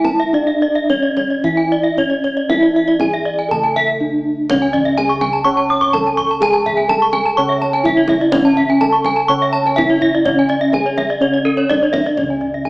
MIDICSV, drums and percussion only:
0, 0, Header, 1, 2, 480
1, 0, Start_track
1, 0, Tempo, 550964
1, 292, Time_signature, 4, 2, 24, 8
1, 1725, Tempo, 514139
1, 3165, Tempo, 480769
1, 12322, End_track
2, 0, Start_track
2, 0, Title_t, "Kendang"
2, 39, Note_on_c, 9, 63, 49
2, 39, Note_on_c, 9, 64, 42
2, 126, Note_off_c, 9, 63, 0
2, 126, Note_off_c, 9, 64, 0
2, 534, Note_on_c, 9, 62, 20
2, 622, Note_off_c, 9, 62, 0
2, 781, Note_on_c, 9, 63, 46
2, 868, Note_off_c, 9, 63, 0
2, 1016, Note_on_c, 9, 63, 47
2, 1016, Note_on_c, 9, 64, 45
2, 1103, Note_off_c, 9, 63, 0
2, 1103, Note_off_c, 9, 64, 0
2, 1254, Note_on_c, 9, 62, 18
2, 1254, Note_on_c, 9, 64, 60
2, 1342, Note_off_c, 9, 62, 0
2, 1342, Note_off_c, 9, 64, 0
2, 1380, Note_on_c, 9, 62, 17
2, 1467, Note_off_c, 9, 62, 0
2, 1722, Note_on_c, 9, 64, 50
2, 1815, Note_off_c, 9, 64, 0
2, 1848, Note_on_c, 9, 62, 19
2, 1942, Note_off_c, 9, 62, 0
2, 1967, Note_on_c, 9, 64, 43
2, 2061, Note_off_c, 9, 64, 0
2, 2207, Note_on_c, 9, 63, 49
2, 2301, Note_off_c, 9, 63, 0
2, 2325, Note_on_c, 9, 62, 20
2, 2419, Note_off_c, 9, 62, 0
2, 2440, Note_on_c, 9, 62, 19
2, 2534, Note_off_c, 9, 62, 0
2, 2565, Note_on_c, 9, 62, 19
2, 2658, Note_off_c, 9, 62, 0
2, 2674, Note_on_c, 9, 62, 15
2, 2674, Note_on_c, 9, 63, 44
2, 2674, Note_on_c, 9, 64, 52
2, 2767, Note_off_c, 9, 62, 0
2, 2767, Note_off_c, 9, 63, 0
2, 2767, Note_off_c, 9, 64, 0
2, 3155, Note_on_c, 9, 62, 19
2, 3155, Note_on_c, 9, 64, 64
2, 3255, Note_off_c, 9, 62, 0
2, 3255, Note_off_c, 9, 64, 0
2, 3283, Note_on_c, 9, 62, 17
2, 3383, Note_off_c, 9, 62, 0
2, 3409, Note_on_c, 9, 62, 26
2, 3509, Note_off_c, 9, 62, 0
2, 4137, Note_on_c, 9, 63, 73
2, 4137, Note_on_c, 9, 64, 92
2, 4237, Note_off_c, 9, 63, 0
2, 4237, Note_off_c, 9, 64, 0
2, 4381, Note_on_c, 9, 64, 80
2, 4480, Note_off_c, 9, 64, 0
2, 4499, Note_on_c, 9, 62, 29
2, 4599, Note_off_c, 9, 62, 0
2, 4619, Note_on_c, 9, 62, 27
2, 4619, Note_on_c, 9, 63, 56
2, 4719, Note_off_c, 9, 62, 0
2, 4719, Note_off_c, 9, 63, 0
2, 4852, Note_on_c, 9, 63, 66
2, 4952, Note_off_c, 9, 63, 0
2, 5328, Note_on_c, 9, 62, 29
2, 5428, Note_off_c, 9, 62, 0
2, 5451, Note_on_c, 9, 62, 25
2, 5551, Note_off_c, 9, 62, 0
2, 5577, Note_on_c, 9, 62, 25
2, 5577, Note_on_c, 9, 63, 66
2, 5577, Note_on_c, 9, 64, 73
2, 5677, Note_off_c, 9, 62, 0
2, 5677, Note_off_c, 9, 63, 0
2, 5677, Note_off_c, 9, 64, 0
2, 5695, Note_on_c, 9, 62, 23
2, 5795, Note_off_c, 9, 62, 0
2, 5819, Note_on_c, 9, 64, 58
2, 5919, Note_off_c, 9, 64, 0
2, 6055, Note_on_c, 9, 64, 81
2, 6155, Note_off_c, 9, 64, 0
2, 6300, Note_on_c, 9, 64, 68
2, 6400, Note_off_c, 9, 64, 0
2, 6413, Note_on_c, 9, 62, 26
2, 6512, Note_off_c, 9, 62, 0
2, 6532, Note_on_c, 9, 62, 27
2, 6532, Note_on_c, 9, 63, 60
2, 6632, Note_off_c, 9, 62, 0
2, 6632, Note_off_c, 9, 63, 0
2, 6766, Note_on_c, 9, 63, 61
2, 6866, Note_off_c, 9, 63, 0
2, 7251, Note_on_c, 9, 62, 28
2, 7351, Note_off_c, 9, 62, 0
2, 7371, Note_on_c, 9, 62, 26
2, 7471, Note_off_c, 9, 62, 0
2, 7488, Note_on_c, 9, 62, 26
2, 7488, Note_on_c, 9, 63, 57
2, 7488, Note_on_c, 9, 64, 74
2, 7588, Note_off_c, 9, 62, 0
2, 7588, Note_off_c, 9, 63, 0
2, 7588, Note_off_c, 9, 64, 0
2, 7599, Note_on_c, 9, 62, 24
2, 7698, Note_off_c, 9, 62, 0
2, 7712, Note_on_c, 9, 63, 75
2, 7712, Note_on_c, 9, 64, 57
2, 7811, Note_off_c, 9, 63, 0
2, 7811, Note_off_c, 9, 64, 0
2, 7956, Note_on_c, 9, 63, 69
2, 7956, Note_on_c, 9, 64, 106
2, 8056, Note_off_c, 9, 63, 0
2, 8056, Note_off_c, 9, 64, 0
2, 8200, Note_on_c, 9, 64, 67
2, 8300, Note_off_c, 9, 64, 0
2, 8324, Note_on_c, 9, 62, 26
2, 8424, Note_off_c, 9, 62, 0
2, 8445, Note_on_c, 9, 62, 25
2, 8445, Note_on_c, 9, 63, 57
2, 8545, Note_off_c, 9, 62, 0
2, 8545, Note_off_c, 9, 63, 0
2, 8679, Note_on_c, 9, 63, 60
2, 8779, Note_off_c, 9, 63, 0
2, 9173, Note_on_c, 9, 62, 23
2, 9273, Note_off_c, 9, 62, 0
2, 9289, Note_on_c, 9, 62, 24
2, 9389, Note_off_c, 9, 62, 0
2, 9415, Note_on_c, 9, 62, 26
2, 9415, Note_on_c, 9, 63, 61
2, 9415, Note_on_c, 9, 64, 68
2, 9515, Note_off_c, 9, 62, 0
2, 9515, Note_off_c, 9, 63, 0
2, 9515, Note_off_c, 9, 64, 0
2, 9533, Note_on_c, 9, 62, 22
2, 9633, Note_off_c, 9, 62, 0
2, 9644, Note_on_c, 9, 64, 64
2, 9744, Note_off_c, 9, 64, 0
2, 9887, Note_on_c, 9, 64, 82
2, 9986, Note_off_c, 9, 64, 0
2, 10121, Note_on_c, 9, 62, 23
2, 10121, Note_on_c, 9, 64, 54
2, 10221, Note_off_c, 9, 62, 0
2, 10221, Note_off_c, 9, 64, 0
2, 10362, Note_on_c, 9, 63, 49
2, 10462, Note_off_c, 9, 63, 0
2, 10606, Note_on_c, 9, 63, 64
2, 10706, Note_off_c, 9, 63, 0
2, 10863, Note_on_c, 9, 62, 21
2, 10963, Note_off_c, 9, 62, 0
2, 10982, Note_on_c, 9, 62, 21
2, 11082, Note_off_c, 9, 62, 0
2, 11097, Note_on_c, 9, 62, 26
2, 11196, Note_off_c, 9, 62, 0
2, 11215, Note_on_c, 9, 62, 28
2, 11315, Note_off_c, 9, 62, 0
2, 11334, Note_on_c, 9, 62, 26
2, 11334, Note_on_c, 9, 63, 61
2, 11334, Note_on_c, 9, 64, 58
2, 11434, Note_off_c, 9, 62, 0
2, 11434, Note_off_c, 9, 63, 0
2, 11434, Note_off_c, 9, 64, 0
2, 11455, Note_on_c, 9, 62, 25
2, 11555, Note_off_c, 9, 62, 0
2, 11565, Note_on_c, 9, 63, 50
2, 11565, Note_on_c, 9, 64, 59
2, 11665, Note_off_c, 9, 63, 0
2, 11665, Note_off_c, 9, 64, 0
2, 11686, Note_on_c, 9, 62, 27
2, 11786, Note_off_c, 9, 62, 0
2, 11803, Note_on_c, 9, 63, 37
2, 11803, Note_on_c, 9, 64, 49
2, 11903, Note_off_c, 9, 63, 0
2, 11903, Note_off_c, 9, 64, 0
2, 12037, Note_on_c, 9, 64, 32
2, 12137, Note_off_c, 9, 64, 0
2, 12174, Note_on_c, 9, 62, 12
2, 12274, Note_off_c, 9, 62, 0
2, 12281, Note_on_c, 9, 62, 12
2, 12281, Note_on_c, 9, 63, 32
2, 12322, Note_off_c, 9, 62, 0
2, 12322, Note_off_c, 9, 63, 0
2, 12322, End_track
0, 0, End_of_file